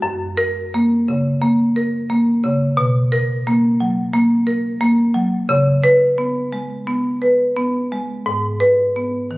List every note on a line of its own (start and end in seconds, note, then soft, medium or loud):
0.02 1.38 F#2 medium
0.37 0.94 A#4 loud
0.74 1.29 A#3 medium
1.08 1.63 C#3 medium
1.42 1.96 A#3 medium
1.76 2.31 A#4 medium
2.10 2.64 A#3 medium
2.44 2.78 C#3 medium
2.77 4.10 B2 loud
3.12 3.67 A#4 loud
3.47 4.01 A#3 medium
3.80 4.34 F#3 medium
4.13 4.67 A#3 medium
4.47 5.01 A#4 medium
4.81 5.35 A#3 medium
5.14 5.48 F#3 medium
5.49 6.82 C#3 loud
5.84 6.38 B4 loud
6.18 6.73 B3 medium
6.53 7.07 G#3 medium
6.87 7.42 B3 medium
7.22 7.77 B4 medium
7.56 8.12 B3 medium
7.92 8.26 G#3 medium
8.26 9.38 G#2 medium
8.60 9.17 B4 medium
8.96 9.38 B3 medium
9.31 9.38 D#3 medium